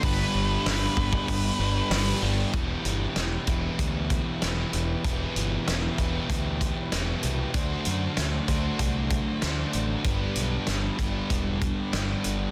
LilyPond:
<<
  \new Staff \with { instrumentName = "Lead electric guitar" } { \time 4/4 \key e \minor \tempo 4 = 96 b'2.~ b'8 r8 | r1 | r1 | r1 |
r1 | }
  \new Staff \with { instrumentName = "Overdriven electric guitar" } { \time 4/4 \key e \minor <g b d' g' b'>2~ <g b d' g' b'>8 <g b d' g' b'>8 <g b d' g' b'>4 | <e b e' g' b'>4. <e b e' g' b'>4. <e b e' g' b'>4 | <e b e' g' b'>4. <e b e' g' b'>4. <e b e' g' b'>4 | <d fis a d' fis' c''>4. <d fis a d' fis' c''>4. <d fis a d' fis' c''>4 |
<g b d' g' b'>4. <g b d' g' b'>4. <g b d' g' b'>4 | }
  \new Staff \with { instrumentName = "Distorted electric guitar" } { \clef bass \time 4/4 \key e \minor <g, d g>2 <g, d g>2 | <e, b, e>1 | <e, b, e>1 | <d a d'>1 |
<g, d g>1 | }
  \new Staff \with { instrumentName = "Overdriven electric guitar" } { \clef bass \time 4/4 \key e \minor <g, d g>2.~ <g, d g>8 <g, d g>8 | r1 | r1 | r1 |
r1 | }
  \new Staff \with { instrumentName = "Fingered electric bass" } { \clef bass \time 4/4 \key e \minor g,,8 g,,8 g,,8 g,,8 g,,8 g,,8 g,,8 g,,8 | e,,8 g,,8 e,,8 e,,8 d,4 e,,8 e,,8 | e,,8 g,,8 e,,8 e,,8 d,4 e,,8 c,8 | d,8 fis,8 d,8 d,8 c,4 d,8 a,,8 |
g,,8 b,,8 g,,8 g,,8 e,,4 g,,8 g,,8 | }
  \new DrumStaff \with { instrumentName = "Drums" } \drummode { \time 4/4 <hho bd>4 <hho sn>8 bd16 bd16 <hho bd>4 <hho sn>4 | <hh bd>8 hh8 <hh sn>8 <hh bd>8 <hh bd>8 <hh bd>8 <hh sn>8 hh8 | <hh bd>8 hh8 <hh sn>8 <hh bd>8 <hh bd>8 <hh bd>8 <hh sn>8 hh8 | <hh bd>8 hh8 <hh sn>8 <hh bd>8 <hh bd>8 <hh bd>8 <hh sn>8 hh8 |
<hh bd>8 hh8 <hh sn>8 <hh bd>8 <hh bd>8 <hh bd>8 <hh sn>8 hh8 | }
>>